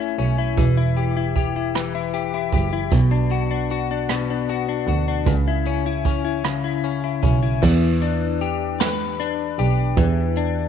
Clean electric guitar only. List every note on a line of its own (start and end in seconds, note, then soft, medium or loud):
0.00 0.57 A3 medium
0.00 0.17 C#4 medium
0.00 0.38 E4 soft
0.18 0.65 C#4 soft
0.38 0.77 E4 soft
0.58 1.74 E3 medium
0.77 1.15 E4 medium
0.97 1.35 G4 medium
1.17 1.55 E4 soft
1.36 2.13 G4 medium
1.56 1.94 E4 soft
1.75 3.00 E3 medium
1.95 2.33 E4 medium
2.14 2.52 G4 medium
2.34 2.72 E4 medium
2.54 3.00 G4 soft
2.73 3.00 E4 soft
2.92 4.09 B2 medium
3.11 3.50 D4 medium
3.31 3.70 F#4 medium
3.51 3.90 D4 medium
3.71 4.48 F#4 medium
3.91 4.29 D4 medium
4.10 5.35 B2 medium
4.30 4.67 D4 medium
4.50 4.87 F#4 medium
4.69 5.07 D4 medium
4.88 5.35 F#4 medium
5.08 5.35 D4 medium
5.27 6.43 C#3 medium
5.48 5.86 E4 medium
5.66 6.05 C#4 medium
5.86 6.24 E4 medium
6.06 6.83 C#4 medium
6.25 6.64 E4 medium
6.44 7.70 C#3 medium
6.64 7.03 E4 medium
6.84 7.21 C#4 medium
7.04 7.42 E4 medium
7.23 7.70 C#4 medium
7.43 8.01 E4 medium
7.62 9.97 E3 medium
8.02 9.19 D4 medium
8.41 9.58 G4 medium
8.80 10.68 B4 medium
9.20 10.37 D4 medium
9.59 10.68 G4 medium
9.98 10.68 E3 medium
10.37 10.68 D4 medium